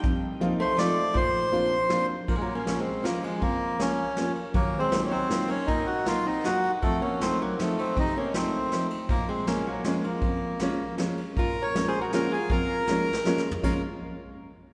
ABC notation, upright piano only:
X:1
M:3/4
L:1/8
Q:1/4=159
K:Bb
V:1 name="Upright piano"
F,,2 [F,B,CEF] z [F,A,CEF] z | B,,2 [F,B,CDF] z [F,B,CDF] z | [K:Bbm] B,,2 [F,B,DF] z [F,B,DF] z | F,,2 [F,B,DF] z [F,B,DF] z |
E,,2 [G,B,EF] z [G,B,EF] z | B,,2 [G,B,EF] z [G,B,EF] z | F,,2 [F,=A,CE] z [F,A,CE] z | C,2 [F,=A,CE] z [F,A,CE] z |
B,,2 [F,A,B,D] z [F,A,B,D] z | F,,2 [F,A,B,D] z [F,A,B,D] z | B,,2 [F,A,B,D] z [F,A,B,D] z | F,,2 [F,A,B,D] z [F,A,B,D] z |
[F,A,B,D] z4 z |]